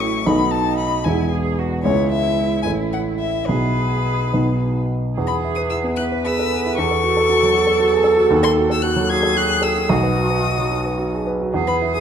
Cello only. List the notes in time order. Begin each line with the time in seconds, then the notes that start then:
Already playing: E4
0.26 D#4
1.04 E4
1.31 G#4
1.58 F#4
1.85 E4
3.48 G#4
5.16 G#4
5.97 B4
6.78 A4
9.11 G#4
9.90 F#4
11.54 G#4